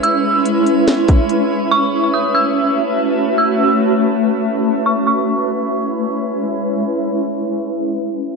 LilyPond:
<<
  \new Staff \with { instrumentName = "Synth bell" } { \time 4/4 \key cis \minor \tempo 4 = 143 e'''4 r2. | cis'''4 dis'''8 e'''8 r2 | e'''4 r2 r8 cis'''8 | cis'''2. r4 |
r1 | }
  \new Staff \with { instrumentName = "Synth texture" } { \time 4/4 \key cis \minor << { <e' b''>1~ | <e' b''>1~ | <e' b''>1 | <e' cis'' b''>1~ |
<e' cis'' b''>1 | } \\ { cis''1 | a''1~ | a''1 | r1 |
r1 | } >> }
  \new Staff \with { instrumentName = "Ambient pad" } { \time 4/4 \key cis \minor << { <cis' b' e''>1~ | <cis' b' e''>1~ | <cis' b' e''>1 | <gis cis' e' b' e''>1~ |
<gis cis' e' b' e''>1 | } \\ { <gis e'>1 | <a fis'>1~ | <a fis'>1 | r1 |
r1 | } >> }
  \new DrumStaff \with { instrumentName = "Drums" } \drummode { \time 4/4 hh4 hh8 hh8 <hh sn>8 <hh bd>8 hh4 | r4 r4 r4 r4 | r4 r4 r4 r4 | r4 r4 r4 r4 |
r4 r4 r4 r4 | }
>>